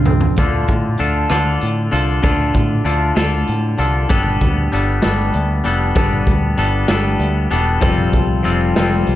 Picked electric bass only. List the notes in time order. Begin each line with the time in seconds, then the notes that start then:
Already playing: C#2
0.38 D2
0.69 A2
1.00 D2
1.31 D2
1.63 A2
1.93 C2
2.24 D2
2.55 A2
2.85 D2
3.17 D2
3.49 A2
3.79 C2
4.10 G1
4.42 D2
4.73 G1
5.05 G1
5.35 D2
5.65 F1
5.96 G1
6.27 D2
6.58 G1
6.89 G1
7.20 D2
7.52 E1
8.13 C2
8.46 F1
8.76 F1
9.08 C2